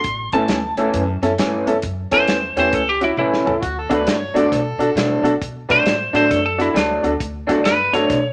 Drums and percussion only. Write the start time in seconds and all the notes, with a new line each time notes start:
0.04 kick, closed hi-hat
0.32 kick, closed hi-hat
0.48 snare, closed hi-hat
0.77 closed hi-hat
0.94 kick, closed hi-hat
1.23 snare, closed hi-hat
1.38 snare, closed hi-hat
1.67 closed hi-hat
1.82 kick, closed hi-hat
2.11 kick, closed hi-hat
2.28 snare, closed hi-hat
2.57 closed hi-hat
2.73 kick, closed hi-hat
3.01 closed hi-hat
3.17 high tom
3.34 snare
3.47 floor tom
3.63 kick, closed hi-hat
3.91 kick, closed hi-hat
4.07 snare, closed hi-hat
4.36 closed hi-hat
4.52 kick, snare, closed hi-hat
4.80 closed hi-hat
4.97 snare, closed hi-hat
5.25 closed hi-hat
5.42 kick, closed hi-hat
5.70 kick, snare, closed hi-hat
5.86 snare, closed hi-hat
6.15 closed hi-hat
6.31 kick, snare, closed hi-hat
6.60 snare, closed hi-hat
6.76 snare, closed hi-hat
7.04 closed hi-hat
7.20 kick, closed hi-hat
7.49 kick, snare, closed hi-hat
7.65 snare, closed hi-hat
7.94 snare, closed hi-hat
8.10 kick, snare, closed hi-hat